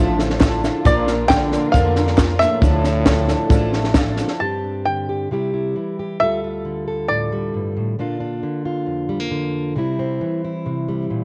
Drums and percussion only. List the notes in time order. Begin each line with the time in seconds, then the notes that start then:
0.19 snare, shaker
0.30 snare
0.40 kick, snare, clap, shaker
0.64 snare, shaker
0.85 kick, snare, shaker
1.07 snare, shaker
1.29 kick, snare, clap, shaker
1.52 snare, shaker
1.74 kick, snare, shaker
1.95 snare, shaker
2.07 snare
2.18 kick, snare, clap, shaker
2.40 snare, shaker
2.62 kick, snare, shaker
2.84 snare, shaker
3.06 kick, snare, clap, shaker
3.28 snare, shaker
3.49 kick, snare, shaker
3.73 snare
3.84 snare
3.94 kick, snare, clap, shaker
4.16 snare, shaker
4.28 snare